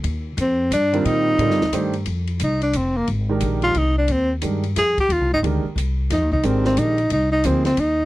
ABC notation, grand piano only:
X:1
M:3/4
L:1/8
Q:"Swing" 1/4=178
K:Eblyd
V:1 name="Grand piano"
z4 z [E,G,CFB]- | [E,G,CFB]2 [D,G,CFB] z [E,A,DGc] z | [K:Fdor] z6 | z [E,A,DGB]3 z2 |
z2 [E,A,DGB] z3 | z2 [E,A,DGB] z3 | z2 [E,A,DGB]3 z | z2 [F,B,EAc] z3 |]